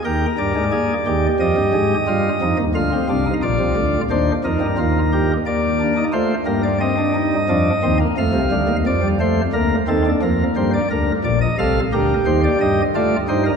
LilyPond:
<<
  \new Staff \with { instrumentName = "Pipe organ" } { \time 4/4 \key ees \major \tempo 4 = 88 << { g''8 d''4. ees''2 | f''4 d''4 c''8 bes'4. | d''4 c''8 bes'16 d''16 ees''2 | f''4 d''8 c''8 bes'8 a'8 bes'8 c''16 d''16 |
\key bes \major r8 d''16 ees''16 f''8 bes'8 c''16 d''16 ees''8 d''8 c''16 bes'16 | } \\ { bes'4 aes'8 g'4. f'8 ees'8 | f'16 c'16 d'16 ees'16 f'4 d'8 ees'8 f'8 g'8 | bes8 d'16 ees'16 f'8 bes8 c'16 d'16 ees'8 d'8 c'16 bes16 | a8 g8 r16 g16 a8 bes8 c'16 d'16 bes4 |
bes'4 a'8 g'4. f'8 ees'8 | } >> }
  \new Staff \with { instrumentName = "Pipe organ" } { \clef bass \time 4/4 \key ees \major <ees, ees>8 <g, g>16 <aes, aes>16 bes8 <ees, ees>8 <f, f>16 <g, g>16 <aes, aes>8 <g, g>8 <f, f>16 <ees, ees>16 | <d, d>8 <c, c>8 <bes,, bes,>16 <c, c>16 <d, d>8 <ees, ees>8 <f, f>16 <g, g>16 <ees, ees>4 | r4 a8 <g, g>4. <f, f>8 <ees, ees>8 | <f, f>16 <c, c>16 <d, d>16 <ees, ees>16 <f, f>4 <d, d>8 <ees, ees>8 <f, f>8 <g, g>8 |
\key bes \major <d, d>8 <bes,, bes,>8 <c, c>8 <d, d>8 <ees, ees>8 <g, g>8 a8 <g, g>8 | }
>>